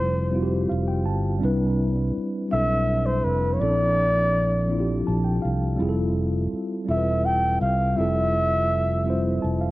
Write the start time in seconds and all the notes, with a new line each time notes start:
Already playing: F1 G3 C4 E4 F4 B4 C5
0.30 G3 C4 E4
0.35 F4 F#4
0.43 G4
0.69 F1 F5
0.88 G5
1.06 G1 A5
1.39 G3 C4 D4
1.43 C2 E4 B4
2.17 muted fretless electric bass stroke
2.48 G3 C4 D4 E5
2.53 B1 E4 A4
3.06 C5
3.24 F1 B4
3.54 F3 C#5
3.59 A#1 C4 C#4 E4 D5
3.63 D4 A4
4.67 F3 C4 D4
4.71 E4 F4
4.79 G4
5.07 A#1 A5
5.24 G5
5.42 C2 F5
5.76 F1 G3 C4 E4
5.81 F4 G#4
5.89 A4
6.53 muted fretless electric bass stroke
6.85 E1 G3 C4 E4 F4
6.90 A4 E5
6.97 B4
7.26 G5
7.61 C2 F5
7.94 F1 G3 C4 E4 E5
7.99 F4 A4
9.04 G3 C4 E4
9.08 F4 C5
9.42 F1 A5
9.61 F5